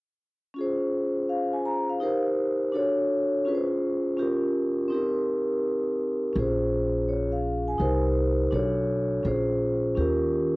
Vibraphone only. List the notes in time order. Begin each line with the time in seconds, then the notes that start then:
0.54 C#4 F4
0.58 G#4 C5
1.29 F5
1.53 G#5
1.66 A#5
1.90 F5
2.00 D#4 G4 A#4 C5
2.72 D4 F#4 A4 C#5
3.45 C#4 F4 G#4 B4
3.55 C5
4.17 C#4 F4 G4 A#4
4.88 C4 D#4
4.92 G4 A#4
6.33 C#4 F4
6.37 G#4 C5
7.09 C#5
7.32 F5
7.68 G#5
7.78 D#4 G4 A#4 C5
8.51 D4 F#4 A4 C#5
9.23 C#4 F4 G#4 C5
9.95 C#4 F4 G4 A#4